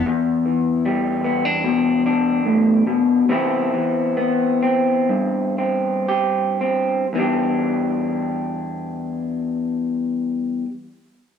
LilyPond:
<<
  \new Staff \with { instrumentName = "Clean electric guitar" } { \time 4/4 \key e \minor \tempo 4 = 64 g''8 r2. r8 | r1 | r1 | }
  \new Staff \with { instrumentName = "Clean electric guitar" } { \clef bass \time 4/4 \key e \minor << { g4 g8 b16 d'8. d'4. | <e b c' e'>4 b8 c'4 c'8 g'8 c'8 | <e g d' g'>1 | } \\ { e,8 e4. b,4 a,8 b,8 | c8 e4. g,2 | e,1 | } >> }
>>